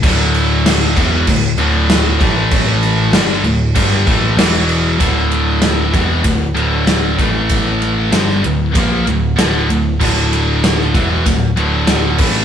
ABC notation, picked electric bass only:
X:1
M:4/4
L:1/8
Q:1/4=96
K:Aphr
V:1 name="Picked electric bass" clef=bass
D,,,3 E,,, D,,, D,,,2 A,,,- | A,,,2 G,,, D,,, G,,, A,,, E,,,2 | D,,,3 E,,, D,,, D,,,2 A,,,- | A,,,2 G,,, D,,, B,,, D,,, D,,, D,,, |
D,,,3 E,,, D,,, D,,,2 A,,, |]